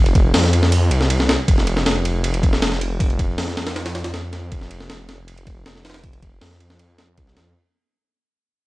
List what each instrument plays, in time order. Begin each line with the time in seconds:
Already playing: detuned saw bass F1
0.06 ride
0.15 kick, ride
0.25 detuned saw bass F1
0.34 detuned saw bass F2, snare, open hi-hat
0.44 snare
0.53 ride
0.63 snare
0.72 ride
0.91 detuned saw bass C2, ride
1.01 snare
1.10 ride
1.20 snare
1.29 snare, ride
1.48 detuned saw bass F1, kick, ride
1.58 snare
1.67 ride
1.77 snare
1.86 snare, ride
2.05 ride
2.24 ride
2.34 ride
2.43 kick, ride
2.53 snare
2.62 snare, ride
2.72 snare
2.81 ride
3.00 detuned saw bass F1, kick, ride
3.10 ride
3.19 kick, ride
3.29 detuned saw bass F1
3.38 detuned saw bass F2, snare, open hi-hat
3.48 snare
3.57 snare, ride
3.67 snare, ride
3.76 snare, ride
3.86 snare, ride
3.95 snare, ride
4.04 snare, ride
4.14 snare, ride
4.33 snare, ride
4.52 detuned saw bass F1, kick, ride
4.61 snare
4.71 ride
4.80 snare
4.90 snare, ride
5.09 snare, ride
5.28 ride
5.38 ride
5.47 kick, ride
5.66 snare, ride
5.76 snare
5.85 snare, ride
5.90 snare, ride
5.94 snare, ride
6.04 detuned saw bass F1, kick, ride
6.13 ride
6.22 kick, ride
6.32 detuned saw bass F1
6.41 detuned saw bass F2, snare, open hi-hat
6.51 snare
6.60 ride
6.70 snare
6.79 ride
6.98 snare, ride
7.18 detuned saw bass C2, kick, ride
7.27 snare
7.37 detuned saw bass F2, snare, ride